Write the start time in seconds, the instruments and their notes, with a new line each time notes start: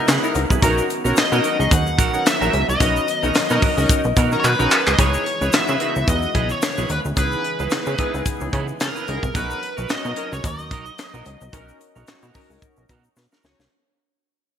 Already playing: analog synth pad C#3 G#3 B3 E4 F#4
0.07 analog synth bass C#3, clean electric guitar E4 G#4 B4, snare, clap, closed hi-hat, shaker
0.23 analog polysynth B3 D#4 E4 A#4, muted clean electric guitar stroke, shaker
0.35 analog synth bass C#2, muted clean electric guitar stroke, closed hi-hat, shaker
0.50 analog synth bass C2, clean electric guitar E4 G#4 B4, kick, shaker
0.62 analog synth bass B1, analog synth pad D#3 F#3, analog polysynth C#4 D#4 F#4 A#4, clean electric guitar D#4 F#4 A#4, kick, closed hi-hat, shaker
0.78 shaker
0.89 muted clean electric guitar stroke, closed hi-hat, shaker
1.04 analog synth bass B1, analog polysynth C#4 D#4 F#4 A#4, clean electric guitar D#4 F#4 A#4, shaker
1.16 analog synth bass B2, lead electric guitar D#5, snare, clap, closed hi-hat, shaker
1.32 analog synth bass B2, analog polysynth C#4 D#4 F#4 A#4, clean electric guitar D#4 F#4 A#4, shaker
1.44 clean electric guitar D#4 F#4 A#4, closed hi-hat, shaker
1.59 analog synth bass C#2, analog polysynth C#4 D#4 F#4 G#4, muted clean electric guitar stroke, shaker
1.71 analog synth bass D#2, lead electric guitar F#5, kick, closed hi-hat, shaker
1.86 muted clean electric guitar stroke, shaker
1.98 analog synth bass A#1, clean electric guitar D#4 F#4 A#4, kick, closed hi-hat, shaker
2.13 analog polysynth C#4 D#4 F#4 A#4, muted clean electric guitar stroke, shaker
2.26 lead electric guitar E5, snare, clap, closed hi-hat, shaker
2.41 analog synth bass A#1, analog polysynth C#4 D#4 F#4 A#4, clean electric guitar D#4 F#4 A#4, shaker
2.53 analog synth bass C#2, muted clean electric guitar stroke, closed hi-hat, shaker
2.68 analog synth bass C2, lead electric guitar D#5, muted clean electric guitar stroke, shaker
2.80 analog synth bass B1, analog polysynth C#4 D#4 F#4 B4, clean electric guitar D#4 F#4 A#4, kick, closed hi-hat, shaker
2.96 shaker
3.08 muted clean electric guitar stroke, closed hi-hat, shaker
3.23 analog synth bass B1, analog polysynth C#4 D#4 F#4 A#4, clean electric guitar D#4 F#4 A#4, shaker
3.34 analog synth bass B2, snare, clap, closed hi-hat, shaker
3.50 analog synth bass B2, analog polysynth C#4 D#4 F#4 A#4, clean electric guitar D#4 F#4 A#4, shaker
3.62 clean electric guitar D#4 F#4 A#4, kick, open hi-hat, shaker
3.77 analog synth bass C#2, analog polysynth C#4 D#4 F#4 A#4, muted clean electric guitar stroke, shaker
3.89 kick, closed hi-hat, shaker
4.04 analog synth bass B1, muted clean electric guitar stroke, shaker
4.16 analog synth bass B2, clean electric guitar D#4 F#4 A#4, kick, closed hi-hat, shaker
4.31 analog polysynth C#4 D#4 F#4 A#4, muted clean electric guitar stroke, shaker
4.40 lead electric guitar C#5
4.44 analog synth bass B2, lead electric guitar B4, muted clean electric guitar stroke, clap, shaker
4.59 analog synth bass B1, analog polysynth C#4 D#4 F#4 A#4, clean electric guitar D#4 F#4 A#4, shaker
4.71 muted clean electric guitar stroke, clap, shaker
4.87 analog synth bass C#2, muted clean electric guitar stroke, clap, shaker
4.94 lead electric guitar D#5
4.98 analog synth bass C#2, analog synth pad C#3 E3 G#3 B3, analog polysynth B3 D#4 E4 G#4, clean electric guitar E4 G#4 B4, lead electric guitar C#5, kick, closed hi-hat, shaker
5.14 shaker
5.26 muted clean electric guitar stroke, closed hi-hat
5.41 analog synth bass C#2, clean electric guitar E4 G#4 B4, shaker
5.52 analog synth bass C#3, analog polysynth B3 D#4 E4 F#4, lead electric guitar E5, snare, clap, closed hi-hat, shaker
5.68 analog synth bass C#3, clean electric guitar E4 G#4 B4, shaker
5.80 analog polysynth B3 D#4 E4 F#4, clean electric guitar E4 G#4 B4, closed hi-hat
5.96 analog synth bass C#2, muted clean electric guitar stroke, shaker
6.08 analog synth bass E2, lead electric guitar D#5, kick, closed hi-hat, shaker
6.22 muted clean electric guitar stroke, shaker
6.35 analog synth bass B1, clean electric guitar E4 G#4 B4, kick, closed hi-hat
6.49 lead electric guitar C#5, muted clean electric guitar stroke, shaker
6.62 snare, clap, closed hi-hat, shaker
6.78 analog synth bass B1, clean electric guitar E4 G#4 B4, shaker
6.89 analog synth bass D#2, lead electric guitar B4, muted clean electric guitar stroke, closed hi-hat, shaker
7.05 analog synth bass D2, muted clean electric guitar stroke, shaker
7.17 analog synth bass C#2, analog polysynth B3 D#4 E4 G#4, clean electric guitar E4 G#4 B4, lead electric guitar B4, kick, closed hi-hat, shaker
7.32 shaker
7.44 muted clean electric guitar stroke, closed hi-hat
7.59 analog synth bass C#2, clean electric guitar E4 G#4 B4, shaker
7.70 analog synth bass C#3, analog polysynth B3 D#4 E4 G#4, snare, clap, closed hi-hat, shaker
7.86 analog synth bass C#3, clean electric guitar E4 G#4 B4, shaker
7.98 analog polysynth B3 D#4 E4 G#4, clean electric guitar E4 G#4 B4, kick, closed hi-hat
8.14 analog synth bass C#2, muted clean electric guitar stroke, shaker
8.26 kick, closed hi-hat, shaker
8.40 analog synth bass C#2, muted clean electric guitar stroke, shaker
8.53 analog synth bass C#3, clean electric guitar E4 G#4 B4, kick, closed hi-hat
8.68 muted clean electric guitar stroke, shaker
8.80 analog synth bass C#3, lead electric guitar A#4, muted clean electric guitar stroke, snare, clap, closed hi-hat, shaker
8.95 clean electric guitar E4 G#4 B4, shaker
9.07 analog synth bass C#2, analog polysynth B3 D#4 E4 G#4, muted clean electric guitar stroke, closed hi-hat, shaker
9.22 analog synth bass C2, muted clean electric guitar stroke, kick, shaker
9.34 analog synth bass B1, analog synth pad F#3, analog polysynth C#4 D#4 F#4 A#4, clean electric guitar D#4 F#4 A#4, lead electric guitar B4, kick, closed hi-hat, shaker
9.50 shaker
9.62 muted clean electric guitar stroke, closed hi-hat
9.77 analog synth bass B1, clean electric guitar D#4 F#4 A#4, shaker
9.89 analog synth bass B2, analog polysynth C#4 D#4 F#4 C#5, lead electric guitar D#5, muted clean electric guitar stroke, snare, clap, closed hi-hat, shaker
10.04 analog synth bass B2, clean electric guitar D#4 F#4 A#4, shaker
10.16 analog polysynth C#4 D#4 F#4 A#4, clean electric guitar D#4 F#4 A#4, closed hi-hat
10.32 analog synth bass C#2, lead electric guitar C#5, muted clean electric guitar stroke, shaker
10.44 analog synth bass D#2, lead electric guitar D#5, kick, closed hi-hat, shaker
10.59 muted clean electric guitar stroke, shaker
10.71 analog synth bass B1, clean electric guitar D#4 F#4 A#4, kick, closed hi-hat
10.86 muted clean electric guitar stroke, shaker
10.98 muted clean electric guitar stroke, snare, clap, closed hi-hat, shaker
11.13 analog synth bass B1, clean electric guitar D#4 F#4 A#4, shaker
11.25 analog synth bass C#2, muted clean electric guitar stroke, closed hi-hat, shaker
11.41 analog synth bass C2, muted clean electric guitar stroke, shaker
11.53 analog synth bass B1, analog polysynth C#4 D#4 F#4 A#4, analog synth pad C#4, clean electric guitar D#4 F#4 A#4, kick, closed hi-hat, shaker
11.68 shaker
11.80 muted clean electric guitar stroke, closed hi-hat, shaker
11.96 analog synth bass B1, clean electric guitar D#4 F#4 A#4, shaker
12.07 analog polysynth C#4 D#4 F#4 C#5, snare, clap, closed hi-hat, shaker
12.22 analog synth bass B2, clean electric guitar D#4 F#4 A#4, shaker
12.34 analog polysynth C#4 D#4 F#4 A#4, clean electric guitar D#4 F#4 A#4, kick, open hi-hat, shaker
12.50 analog synth bass C#2, muted clean electric guitar stroke, shaker
12.62 kick, closed hi-hat, shaker
12.76 analog synth bass B1, muted clean electric guitar stroke, shaker
12.89 analog synth bass B2, clean electric guitar D#4 F#4 A#4, kick, closed hi-hat, shaker
13.04 muted clean electric guitar stroke, shaker
13.16 analog synth bass B2, muted clean electric guitar stroke, snare, shaker
13.32 clean electric guitar D#4 F#4 A#4, snare, shaker
13.43 analog synth bass C#2, analog polysynth C#4 D#4 F#4 C#5, muted clean electric guitar stroke, snare, shaker
13.59 analog synth bass C2, muted clean electric guitar stroke, snare, shaker